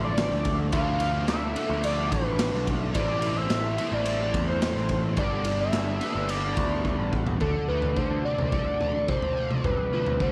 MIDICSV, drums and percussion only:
0, 0, Header, 1, 2, 480
1, 0, Start_track
1, 0, Tempo, 557103
1, 632, Time_signature, 4, 2, 24, 8
1, 8891, End_track
2, 0, Start_track
2, 0, Title_t, "Drums"
2, 150, Note_on_c, 9, 51, 89
2, 154, Note_on_c, 9, 38, 110
2, 236, Note_off_c, 9, 51, 0
2, 240, Note_off_c, 9, 38, 0
2, 270, Note_on_c, 9, 38, 30
2, 356, Note_off_c, 9, 38, 0
2, 386, Note_on_c, 9, 51, 64
2, 389, Note_on_c, 9, 36, 85
2, 472, Note_off_c, 9, 51, 0
2, 476, Note_off_c, 9, 36, 0
2, 623, Note_on_c, 9, 51, 99
2, 628, Note_on_c, 9, 36, 108
2, 709, Note_off_c, 9, 51, 0
2, 715, Note_off_c, 9, 36, 0
2, 860, Note_on_c, 9, 51, 69
2, 946, Note_off_c, 9, 51, 0
2, 1101, Note_on_c, 9, 51, 78
2, 1105, Note_on_c, 9, 38, 102
2, 1187, Note_off_c, 9, 51, 0
2, 1191, Note_off_c, 9, 38, 0
2, 1344, Note_on_c, 9, 51, 72
2, 1430, Note_off_c, 9, 51, 0
2, 1581, Note_on_c, 9, 51, 92
2, 1667, Note_off_c, 9, 51, 0
2, 1825, Note_on_c, 9, 51, 68
2, 1826, Note_on_c, 9, 36, 83
2, 1912, Note_off_c, 9, 36, 0
2, 1912, Note_off_c, 9, 51, 0
2, 2057, Note_on_c, 9, 51, 118
2, 2061, Note_on_c, 9, 38, 120
2, 2143, Note_off_c, 9, 51, 0
2, 2147, Note_off_c, 9, 38, 0
2, 2187, Note_on_c, 9, 38, 35
2, 2273, Note_off_c, 9, 38, 0
2, 2303, Note_on_c, 9, 36, 83
2, 2303, Note_on_c, 9, 51, 67
2, 2389, Note_off_c, 9, 36, 0
2, 2389, Note_off_c, 9, 51, 0
2, 2537, Note_on_c, 9, 51, 102
2, 2542, Note_on_c, 9, 36, 111
2, 2624, Note_off_c, 9, 51, 0
2, 2628, Note_off_c, 9, 36, 0
2, 2772, Note_on_c, 9, 51, 82
2, 2859, Note_off_c, 9, 51, 0
2, 3014, Note_on_c, 9, 51, 96
2, 3017, Note_on_c, 9, 38, 91
2, 3100, Note_off_c, 9, 51, 0
2, 3103, Note_off_c, 9, 38, 0
2, 3258, Note_on_c, 9, 51, 72
2, 3344, Note_off_c, 9, 51, 0
2, 3493, Note_on_c, 9, 51, 105
2, 3579, Note_off_c, 9, 51, 0
2, 3739, Note_on_c, 9, 36, 85
2, 3739, Note_on_c, 9, 51, 61
2, 3825, Note_off_c, 9, 36, 0
2, 3825, Note_off_c, 9, 51, 0
2, 3978, Note_on_c, 9, 51, 104
2, 3982, Note_on_c, 9, 38, 109
2, 4065, Note_off_c, 9, 51, 0
2, 4068, Note_off_c, 9, 38, 0
2, 4100, Note_on_c, 9, 38, 32
2, 4186, Note_off_c, 9, 38, 0
2, 4211, Note_on_c, 9, 51, 62
2, 4218, Note_on_c, 9, 36, 79
2, 4298, Note_off_c, 9, 51, 0
2, 4304, Note_off_c, 9, 36, 0
2, 4451, Note_on_c, 9, 51, 85
2, 4457, Note_on_c, 9, 36, 110
2, 4537, Note_off_c, 9, 51, 0
2, 4543, Note_off_c, 9, 36, 0
2, 4691, Note_on_c, 9, 51, 77
2, 4778, Note_off_c, 9, 51, 0
2, 4934, Note_on_c, 9, 51, 88
2, 4938, Note_on_c, 9, 38, 103
2, 5020, Note_off_c, 9, 51, 0
2, 5024, Note_off_c, 9, 38, 0
2, 5178, Note_on_c, 9, 51, 66
2, 5181, Note_on_c, 9, 38, 32
2, 5264, Note_off_c, 9, 51, 0
2, 5267, Note_off_c, 9, 38, 0
2, 5417, Note_on_c, 9, 51, 100
2, 5503, Note_off_c, 9, 51, 0
2, 5658, Note_on_c, 9, 51, 61
2, 5661, Note_on_c, 9, 36, 89
2, 5744, Note_off_c, 9, 51, 0
2, 5747, Note_off_c, 9, 36, 0
2, 5901, Note_on_c, 9, 36, 71
2, 5987, Note_off_c, 9, 36, 0
2, 6141, Note_on_c, 9, 36, 87
2, 6227, Note_off_c, 9, 36, 0
2, 6260, Note_on_c, 9, 43, 92
2, 6346, Note_off_c, 9, 43, 0
2, 6379, Note_on_c, 9, 43, 79
2, 6383, Note_on_c, 9, 36, 95
2, 6465, Note_off_c, 9, 43, 0
2, 6469, Note_off_c, 9, 36, 0
2, 6739, Note_on_c, 9, 43, 79
2, 6825, Note_off_c, 9, 43, 0
2, 6861, Note_on_c, 9, 47, 64
2, 6863, Note_on_c, 9, 36, 98
2, 6947, Note_off_c, 9, 47, 0
2, 6950, Note_off_c, 9, 36, 0
2, 7225, Note_on_c, 9, 43, 80
2, 7311, Note_off_c, 9, 43, 0
2, 7344, Note_on_c, 9, 36, 112
2, 7430, Note_off_c, 9, 36, 0
2, 7589, Note_on_c, 9, 43, 76
2, 7675, Note_off_c, 9, 43, 0
2, 7826, Note_on_c, 9, 47, 74
2, 7828, Note_on_c, 9, 36, 117
2, 7913, Note_off_c, 9, 47, 0
2, 7914, Note_off_c, 9, 36, 0
2, 7947, Note_on_c, 9, 43, 82
2, 8033, Note_off_c, 9, 43, 0
2, 8191, Note_on_c, 9, 47, 77
2, 8277, Note_off_c, 9, 47, 0
2, 8309, Note_on_c, 9, 36, 100
2, 8309, Note_on_c, 9, 43, 79
2, 8395, Note_off_c, 9, 36, 0
2, 8396, Note_off_c, 9, 43, 0
2, 8671, Note_on_c, 9, 43, 91
2, 8758, Note_off_c, 9, 43, 0
2, 8791, Note_on_c, 9, 36, 90
2, 8791, Note_on_c, 9, 47, 58
2, 8877, Note_off_c, 9, 36, 0
2, 8877, Note_off_c, 9, 47, 0
2, 8891, End_track
0, 0, End_of_file